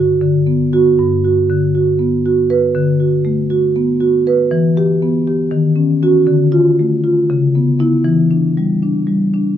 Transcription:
0.00 0.20 G2 medium
0.00 0.12 D3 medium
0.00 0.22 F#4 medium
0.21 0.95 D3 medium
0.47 0.71 B3 medium
0.73 0.96 B3 medium
0.73 0.96 F#4 loud
0.99 2.71 G2 medium
1.24 1.65 F#4 medium
1.49 1.90 D3 medium
1.75 2.15 F#4 medium
1.99 2.39 B3 medium
2.26 2.65 F#4 medium
2.50 2.75 B4 loud
2.75 4.47 D3 loud
3.00 3.40 F#4 medium
3.25 3.65 A3 medium
3.50 3.90 F#4 medium
3.76 4.16 B3 medium
4.01 4.41 F#4 medium
4.27 4.51 B4 loud
4.51 5.48 E3 loud
4.77 5.17 G4 loud
5.02 5.41 B3 medium
5.27 5.52 G4 medium
5.51 6.25 D#3 loud
5.76 6.01 C#4 medium
6.02 6.25 C#4 medium
6.02 6.25 F#4 loud
6.27 7.26 D3 medium
6.52 6.93 F4 loud
6.79 7.20 A3 medium
7.04 7.29 F4 medium
7.30 8.03 C#3 loud
7.55 7.78 B3 medium
7.79 8.02 B3 medium
7.79 8.03 E4 loud
8.04 9.57 E3 loud
8.31 8.72 D4 medium
8.57 8.98 G3 medium
8.83 9.25 D4 medium
9.07 9.50 G3 medium
9.34 9.57 D4 medium

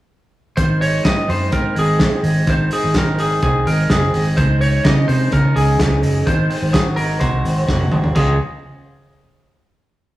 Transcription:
0.57 0.98 G#1 loud
0.57 1.28 D#3 medium
0.57 0.80 C5 medium
0.57 kick loud
0.57 closed hi-hat medium
0.81 1.75 G#3 medium
0.81 1.06 C#5 medium
0.81 open hi-hat medium
1.04 1.25 G#2 medium
1.04 1.51 C4 medium
1.04 1.30 D#5 loud
1.04 kick loud
1.04 snare loud
1.04 closed hi-hat medium
1.28 1.49 F#2 medium
1.28 2.47 D#3 medium
1.28 1.52 C5 medium
1.28 open hi-hat medium
1.52 1.73 G#2 medium
1.52 1.99 C4 medium
1.52 1.77 A#4 medium
1.52 kick loud
1.52 closed hi-hat medium
1.76 2.07 G#1 medium
1.76 2.22 G#3 medium
1.76 2.22 G#4 medium
1.76 open hi-hat medium
1.99 2.94 C4 medium
1.99 kick loud
1.99 snare loud
1.99 closed hi-hat medium
2.23 2.44 G#1 medium
2.23 2.72 G#3 medium
2.23 open hi-hat medium
2.47 2.68 G#1 medium
2.47 3.18 D#3 medium
2.47 2.73 C5 medium
2.47 kick loud
2.47 closed hi-hat medium
2.71 3.66 G#3 medium
2.71 2.97 G#4 medium
2.71 open hi-hat medium
2.84 3.40 G#1 medium
2.94 3.42 C4 medium
2.94 3.21 A#4 medium
2.94 kick loud
2.94 snare loud
2.94 closed hi-hat medium
3.18 4.37 D#3 medium
3.18 3.42 G#4 medium
3.18 open hi-hat medium
3.43 3.63 C2 medium
3.43 3.88 C4 medium
3.43 3.67 G#4 medium
3.43 kick medium
3.43 closed hi-hat medium
3.67 3.87 G#1 medium
3.67 4.13 G#3 medium
3.67 3.91 A#4 medium
3.67 open hi-hat medium
3.90 4.10 F#1 medium
3.90 4.42 C4 medium
3.90 4.24 G#4 medium
3.90 kick loud
3.90 snare loud
3.90 closed hi-hat medium
4.14 4.34 G#1 medium
4.14 4.60 G#3 medium
4.14 open hi-hat medium
4.37 4.78 C#2 loud
4.37 5.08 D#3 medium
4.37 4.59 C5 loud
4.37 kick loud
4.37 closed hi-hat medium
4.61 5.55 G#3 medium
4.61 4.85 C#5 medium
4.61 open hi-hat medium
4.85 5.05 C#3 medium
4.85 5.31 C#4 medium
4.85 5.09 D#5 loud
4.85 kick loud
4.85 snare loud
4.85 closed hi-hat medium
5.08 5.29 C3 medium
5.08 6.25 D#3 medium
5.08 5.32 C5 loud
5.08 open hi-hat medium
5.32 5.52 C#3 loud
5.32 5.79 C#4 medium
5.32 5.57 A#4 medium
5.32 kick medium
5.32 closed hi-hat medium
5.55 5.76 C#2 medium
5.55 6.02 G#3 medium
5.55 6.29 G#4 medium
5.55 open hi-hat medium
5.79 6.00 C#2 medium
5.79 6.32 C#4 medium
5.79 kick medium
5.79 snare loud
5.79 closed hi-hat medium
6.03 6.23 F#1 medium
6.03 6.76 G#3 medium
6.03 open hi-hat medium
6.26 6.47 G#1 loud
6.26 8.15 D#3 medium
6.26 6.75 C5 loud
6.26 kick loud
6.26 closed hi-hat medium
6.49 7.44 C4 medium
6.49 open hi-hat medium
6.62 7.18 G#1 medium
6.73 7.20 F#4 medium
6.73 6.80 G#4 medium
6.73 kick loud
6.73 snare loud
6.73 closed hi-hat medium
6.96 8.15 G#3 medium
6.96 7.19 A#4 medium
6.96 open hi-hat medium
7.20 7.41 C2 medium
7.20 7.67 F#4 medium
7.20 7.65 C5 medium
7.20 kick medium
7.20 closed hi-hat medium
7.45 7.65 G#1 medium
7.45 7.90 C4 medium
7.45 open hi-hat medium
7.68 7.89 F#1 medium
7.68 8.17 F#4 medium
7.68 kick loud
7.68 snare medium
7.80 high tom medium
7.91 8.12 G#1 medium
7.91 8.15 C4 medium
7.91 mid tom medium
8.04 floor tom medium
8.15 8.38 C#2 medium
8.15 8.34 G#3 medium
8.15 8.35 C#4 medium
8.15 8.35 F4 medium
8.15 8.38 G#4 medium
8.15 kick medium
8.15 crash medium

